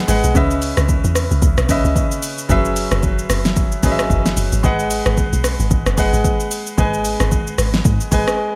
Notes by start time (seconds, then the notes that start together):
Already playing: G#3 G#4 B4 D#5 F#5
0.08 G#1 G#3 G#4 B4 D#5 F#5, open hi-hat, shaker
0.24 B1, shaker
0.34 C#2 C#3 C#4 B4 D#5 E5, kick, shaker
0.51 shaker
0.62 open hi-hat, shaker
0.77 C#2, cross-stick, shaker
0.89 kick, shaker
1.04 E2, shaker
1.15 cross-stick, open hi-hat, shaker
1.31 C#2, shaker
1.42 C#2, kick, shaker
1.58 B1, cross-stick, shaker
1.68 C#3 C#4 B4 D#5 E5, kick, open hi-hat, shaker
1.85 C#2, shaker
1.96 kick, shaker
2.12 shaker
2.23 open hi-hat, shaker
2.38 shaker
2.49 F#1 F#3 C#4 G#4 B4 E5, kick, shaker
2.65 shaker
2.76 open hi-hat, shaker
2.91 F#1, cross-stick, shaker
3.03 kick, shaker
3.19 shaker
3.30 F#1, cross-stick, open hi-hat, shaker
3.45 snare, shaker
3.56 kick, shaker
3.72 shaker
3.83 G#1 F#3 C#4 G#4 B4 D#5, kick, open hi-hat, shaker
3.92 E5
3.99 cross-stick, shaker
4.10 F#1, kick, shaker
4.26 snare, shaker
4.37 F#1, open hi-hat, shaker
4.52 G#1, shaker
4.63 G#1 G#3 G#4 B4 D#5 F#5, kick, shaker
4.79 shaker
4.91 open hi-hat, shaker
5.06 G#1, cross-stick, shaker
5.17 kick, shaker
5.33 B1, shaker
5.44 cross-stick, open hi-hat, shaker
5.60 G#1, shaker
5.71 G#1, kick, shaker
5.86 F#1, cross-stick, shaker
5.97 G#3 G#4 B4 D#5 F#5, kick, open hi-hat, shaker
6.13 G#1, shaker
6.24 kick, shaker
6.40 shaker
6.51 open hi-hat, shaker
6.67 shaker
6.78 G#1 G#3 G#4 B4 D#5 G#5, kick, shaker
6.94 shaker
7.05 open hi-hat, shaker
7.20 G#1, cross-stick, shaker
7.32 kick, shaker
7.47 shaker
7.58 G#1, cross-stick, open hi-hat, shaker
7.74 snare, shaker
7.85 G#2, kick, shaker
8.01 shaker
8.11 G#1 G#3 G#4 B4 D#5 G#5, kick, open hi-hat, shaker
8.28 cross-stick, shaker